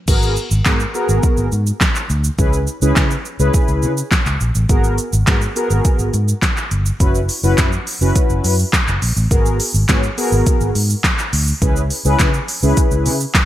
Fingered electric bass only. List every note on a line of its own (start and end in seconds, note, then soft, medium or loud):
0.08 0.35 G#1 loud
0.51 0.60 G#1 medium
0.66 0.84 G#2 medium
1.09 1.18 G#1 medium
1.38 1.47 G#1 loud
1.52 1.71 G#2 loud
2.10 2.28 D2 loud
2.39 2.66 C#2 loud
2.82 2.91 C#2 medium
2.97 3.15 C#3 medium
3.40 3.49 C#2 medium
3.69 3.84 C#2 loud
3.83 4.01 C#3 medium
4.26 4.35 C#2 medium
4.41 4.50 A#1 medium
4.55 4.64 A1 medium
4.69 4.97 G#1 loud
5.13 5.22 G#1 medium
5.27 5.46 G#2 loud
5.70 5.80 G#1 medium
5.99 6.08 G#1 loud
6.14 6.32 G#2 loud
6.71 6.90 G1 medium
7.00 7.28 F#1 loud
7.43 7.53 F#1 medium
7.58 7.77 F#2 medium
8.01 8.10 F#1 medium
8.30 8.39 F#1 loud
8.44 8.63 F#2 medium
8.88 8.97 F#1 medium
9.02 9.11 A#1 medium
9.17 9.26 A1 medium
9.31 9.59 G#1 loud
9.74 9.83 G#1 medium
9.89 10.07 G#2 loud
10.32 10.41 G#1 medium
10.61 10.70 G#1 loud
10.75 10.94 G#2 loud
11.33 11.51 D2 loud
11.62 11.89 C#2 loud
12.05 12.14 C#2 medium
12.20 12.38 C#3 loud
12.63 12.72 C#2 medium
12.92 13.08 C#2 loud
13.06 13.24 C#3 loud